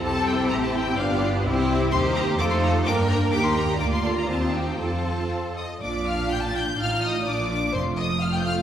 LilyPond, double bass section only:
\new Staff \with { instrumentName = "Double bass section" } { \clef bass \time 2/4 \key c \mixolydian \tempo 4 = 126 c,4 a,,4 | g,,4 c,4 | \key bes \major ees,4 f,4 | g,4 ees,4 |
d,4 ees,4 | f,4. r8 | bes,,2 | a,,4 bes,,4 |
f,,2 | }